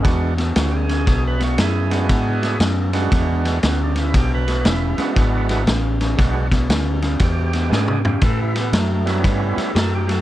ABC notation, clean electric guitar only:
X:1
M:4/4
L:1/8
Q:"Swing" 1/4=118
K:Emix
V:1 name="Clean electric guitar" clef=bass
[E,,B,,] [E,,B,,] [E,,C,] [E,,C,] [E,,B,,] [E,,B,,] [E,,C,] [E,,C,] | [E,,B,,] [E,,B,,] [E,,C,] [E,,C,] [E,,B,,] [E,,B,,] [E,,C,] [E,,C,] | [E,,B,,] [E,,B,,] [E,,C,] [E,,C,] [E,,B,,] [E,,B,,] [E,,C,] [E,,C,] | [E,,B,,] [E,,B,,] [E,,C,] [E,,C,] [E,,B,,] [E,,B,,] [E,,C,] [E,,C,] |
[A,,E,] [A,,E,] [A,,F,] [A,,F,] [A,,E,] [A,,E,] [A,,F,] [A,,F,] |]